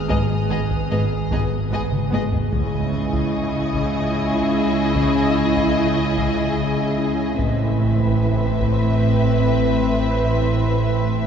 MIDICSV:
0, 0, Header, 1, 11, 480
1, 0, Start_track
1, 0, Tempo, 810811
1, 56, Time_signature, 3, 2, 24, 8
1, 6671, End_track
2, 0, Start_track
2, 0, Title_t, "Violin section"
2, 0, Program_c, 0, 48
2, 0, Note_on_c, 0, 87, 43
2, 0, Note_on_c, 0, 89, 41
2, 0, Note_on_c, 0, 90, 44
2, 272, Note_off_c, 0, 90, 0
2, 752, Note_off_c, 0, 89, 0
2, 1231, Note_off_c, 0, 87, 0
2, 1493, Note_on_c, 0, 87, 47
2, 1499, Note_on_c, 0, 85, 47
2, 1501, Note_on_c, 0, 80, 46
2, 2737, Note_off_c, 0, 87, 0
2, 2737, Note_on_c, 0, 88, 47
2, 3151, Note_off_c, 0, 88, 0
2, 3634, Note_off_c, 0, 85, 0
2, 4115, Note_off_c, 0, 80, 0
2, 6671, End_track
3, 0, Start_track
3, 0, Title_t, "Violin section"
3, 0, Program_c, 1, 48
3, 54, Note_on_c, 1, 75, 53
3, 102, Note_off_c, 1, 75, 0
3, 302, Note_on_c, 1, 75, 44
3, 349, Note_off_c, 1, 75, 0
3, 535, Note_on_c, 1, 75, 41
3, 583, Note_off_c, 1, 75, 0
3, 781, Note_on_c, 1, 75, 45
3, 828, Note_off_c, 1, 75, 0
3, 1024, Note_on_c, 1, 75, 50
3, 1071, Note_off_c, 1, 75, 0
3, 1266, Note_on_c, 1, 75, 47
3, 1313, Note_off_c, 1, 75, 0
3, 1497, Note_on_c, 1, 75, 64
3, 4353, Note_off_c, 1, 75, 0
3, 4375, Note_on_c, 1, 76, 61
3, 6671, Note_off_c, 1, 76, 0
3, 6671, End_track
4, 0, Start_track
4, 0, Title_t, "Ambient pad"
4, 0, Program_c, 2, 92
4, 0, Note_on_c, 2, 68, 56
4, 0, Note_on_c, 2, 71, 57
4, 0, Note_on_c, 2, 80, 54
4, 1473, Note_off_c, 2, 68, 0
4, 1487, Note_off_c, 2, 80, 0
4, 1494, Note_on_c, 2, 80, 52
4, 1495, Note_off_c, 2, 71, 0
4, 1497, Note_on_c, 2, 75, 54
4, 1498, Note_on_c, 2, 64, 45
4, 4351, Note_off_c, 2, 80, 0
4, 4365, Note_off_c, 2, 64, 0
4, 4371, Note_on_c, 2, 60, 48
4, 4372, Note_on_c, 2, 64, 48
4, 4374, Note_on_c, 2, 83, 52
4, 4376, Note_off_c, 2, 75, 0
4, 6671, Note_off_c, 2, 60, 0
4, 6671, Note_off_c, 2, 64, 0
4, 6671, Note_off_c, 2, 83, 0
4, 6671, End_track
5, 0, Start_track
5, 0, Title_t, "Violin section"
5, 0, Program_c, 3, 48
5, 52, Note_on_c, 3, 68, 44
5, 99, Note_off_c, 3, 68, 0
5, 298, Note_on_c, 3, 68, 48
5, 346, Note_off_c, 3, 68, 0
5, 537, Note_on_c, 3, 68, 43
5, 585, Note_off_c, 3, 68, 0
5, 779, Note_on_c, 3, 68, 46
5, 827, Note_off_c, 3, 68, 0
5, 1027, Note_on_c, 3, 68, 50
5, 1074, Note_off_c, 3, 68, 0
5, 1260, Note_on_c, 3, 68, 46
5, 1308, Note_off_c, 3, 68, 0
5, 1502, Note_on_c, 3, 68, 65
5, 4355, Note_off_c, 3, 68, 0
5, 4373, Note_on_c, 3, 71, 67
5, 6671, Note_off_c, 3, 71, 0
5, 6671, End_track
6, 0, Start_track
6, 0, Title_t, "Viola section"
6, 0, Program_c, 4, 48
6, 49, Note_on_c, 4, 59, 50
6, 96, Note_off_c, 4, 59, 0
6, 297, Note_on_c, 4, 59, 45
6, 344, Note_off_c, 4, 59, 0
6, 540, Note_on_c, 4, 59, 45
6, 588, Note_off_c, 4, 59, 0
6, 778, Note_on_c, 4, 59, 48
6, 825, Note_off_c, 4, 59, 0
6, 1015, Note_on_c, 4, 59, 52
6, 1062, Note_off_c, 4, 59, 0
6, 1251, Note_on_c, 4, 59, 55
6, 1299, Note_off_c, 4, 59, 0
6, 1497, Note_on_c, 4, 64, 67
6, 4352, Note_off_c, 4, 64, 0
6, 4372, Note_on_c, 4, 60, 59
6, 6671, Note_off_c, 4, 60, 0
6, 6671, End_track
7, 0, Start_track
7, 0, Title_t, "Marimba"
7, 0, Program_c, 5, 12
7, 47, Note_on_c, 5, 44, 66
7, 193, Note_off_c, 5, 44, 0
7, 290, Note_on_c, 5, 44, 49
7, 436, Note_off_c, 5, 44, 0
7, 529, Note_on_c, 5, 44, 43
7, 675, Note_off_c, 5, 44, 0
7, 774, Note_on_c, 5, 44, 61
7, 918, Note_off_c, 5, 44, 0
7, 1021, Note_on_c, 5, 44, 47
7, 1164, Note_off_c, 5, 44, 0
7, 1259, Note_on_c, 5, 56, 48
7, 1402, Note_off_c, 5, 56, 0
7, 1501, Note_on_c, 5, 49, 66
7, 1643, Note_off_c, 5, 49, 0
7, 1737, Note_on_c, 5, 49, 53
7, 1881, Note_off_c, 5, 49, 0
7, 1978, Note_on_c, 5, 49, 47
7, 2122, Note_off_c, 5, 49, 0
7, 2215, Note_on_c, 5, 49, 71
7, 2359, Note_off_c, 5, 49, 0
7, 2452, Note_on_c, 5, 49, 52
7, 2597, Note_off_c, 5, 49, 0
7, 2694, Note_on_c, 5, 61, 55
7, 2839, Note_off_c, 5, 61, 0
7, 2935, Note_on_c, 5, 49, 76
7, 3079, Note_off_c, 5, 49, 0
7, 3175, Note_on_c, 5, 49, 49
7, 3319, Note_off_c, 5, 49, 0
7, 3420, Note_on_c, 5, 49, 50
7, 3562, Note_off_c, 5, 49, 0
7, 3657, Note_on_c, 5, 49, 72
7, 3800, Note_off_c, 5, 49, 0
7, 3896, Note_on_c, 5, 49, 48
7, 4040, Note_off_c, 5, 49, 0
7, 4135, Note_on_c, 5, 61, 49
7, 4279, Note_off_c, 5, 61, 0
7, 4379, Note_on_c, 5, 45, 72
7, 4522, Note_off_c, 5, 45, 0
7, 4615, Note_on_c, 5, 45, 46
7, 4759, Note_off_c, 5, 45, 0
7, 4856, Note_on_c, 5, 45, 45
7, 5000, Note_off_c, 5, 45, 0
7, 5096, Note_on_c, 5, 45, 55
7, 5240, Note_off_c, 5, 45, 0
7, 5338, Note_on_c, 5, 45, 41
7, 5481, Note_off_c, 5, 45, 0
7, 5577, Note_on_c, 5, 57, 33
7, 5721, Note_off_c, 5, 57, 0
7, 5815, Note_on_c, 5, 45, 45
7, 5959, Note_off_c, 5, 45, 0
7, 6059, Note_on_c, 5, 45, 33
7, 6202, Note_off_c, 5, 45, 0
7, 6302, Note_on_c, 5, 45, 28
7, 6444, Note_off_c, 5, 45, 0
7, 6543, Note_on_c, 5, 45, 38
7, 6671, Note_off_c, 5, 45, 0
7, 6671, End_track
8, 0, Start_track
8, 0, Title_t, "Cello section"
8, 0, Program_c, 6, 48
8, 61, Note_on_c, 6, 44, 60
8, 109, Note_off_c, 6, 44, 0
8, 296, Note_on_c, 6, 44, 52
8, 344, Note_off_c, 6, 44, 0
8, 534, Note_on_c, 6, 44, 54
8, 582, Note_off_c, 6, 44, 0
8, 777, Note_on_c, 6, 44, 53
8, 825, Note_off_c, 6, 44, 0
8, 1015, Note_on_c, 6, 44, 59
8, 1063, Note_off_c, 6, 44, 0
8, 1256, Note_on_c, 6, 44, 56
8, 1303, Note_off_c, 6, 44, 0
8, 1497, Note_on_c, 6, 49, 60
8, 4353, Note_off_c, 6, 49, 0
8, 4381, Note_on_c, 6, 45, 58
8, 6671, Note_off_c, 6, 45, 0
8, 6671, End_track
9, 0, Start_track
9, 0, Title_t, "Synth drone"
9, 0, Program_c, 7, 95
9, 0, Note_on_c, 7, 32, 77
9, 1496, Note_on_c, 7, 37, 72
9, 1500, Note_off_c, 7, 32, 0
9, 4376, Note_off_c, 7, 37, 0
9, 4380, Note_on_c, 7, 33, 70
9, 6671, Note_off_c, 7, 33, 0
9, 6671, End_track
10, 0, Start_track
10, 0, Title_t, "Double bass section"
10, 0, Program_c, 8, 48
10, 54, Note_on_c, 8, 32, 55
10, 102, Note_off_c, 8, 32, 0
10, 296, Note_on_c, 8, 32, 54
10, 343, Note_off_c, 8, 32, 0
10, 536, Note_on_c, 8, 32, 63
10, 584, Note_off_c, 8, 32, 0
10, 779, Note_on_c, 8, 32, 55
10, 827, Note_off_c, 8, 32, 0
10, 1017, Note_on_c, 8, 32, 57
10, 1064, Note_off_c, 8, 32, 0
10, 1257, Note_on_c, 8, 32, 56
10, 1305, Note_off_c, 8, 32, 0
10, 1497, Note_on_c, 8, 37, 64
10, 4353, Note_off_c, 8, 37, 0
10, 4377, Note_on_c, 8, 33, 56
10, 6671, Note_off_c, 8, 33, 0
10, 6671, End_track
11, 0, Start_track
11, 0, Title_t, "Taiko and cinematic ensemble drums"
11, 59, Note_on_c, 9, 41, 84
11, 119, Note_off_c, 9, 41, 0
11, 420, Note_on_c, 9, 41, 61
11, 479, Note_off_c, 9, 41, 0
11, 777, Note_on_c, 9, 41, 79
11, 836, Note_off_c, 9, 41, 0
11, 1138, Note_on_c, 9, 47, 72
11, 1198, Note_off_c, 9, 47, 0
11, 1260, Note_on_c, 9, 48, 84
11, 1319, Note_off_c, 9, 48, 0
11, 1376, Note_on_c, 9, 43, 71
11, 1435, Note_off_c, 9, 43, 0
11, 1496, Note_on_c, 9, 41, 82
11, 1555, Note_off_c, 9, 41, 0
11, 1854, Note_on_c, 9, 41, 66
11, 1914, Note_off_c, 9, 41, 0
11, 2216, Note_on_c, 9, 41, 67
11, 2275, Note_off_c, 9, 41, 0
11, 2934, Note_on_c, 9, 41, 80
11, 2993, Note_off_c, 9, 41, 0
11, 3298, Note_on_c, 9, 41, 62
11, 3357, Note_off_c, 9, 41, 0
11, 3658, Note_on_c, 9, 41, 69
11, 3718, Note_off_c, 9, 41, 0
11, 4375, Note_on_c, 9, 41, 76
11, 4434, Note_off_c, 9, 41, 0
11, 4738, Note_on_c, 9, 41, 58
11, 4797, Note_off_c, 9, 41, 0
11, 5097, Note_on_c, 9, 41, 62
11, 5156, Note_off_c, 9, 41, 0
11, 6671, End_track
0, 0, End_of_file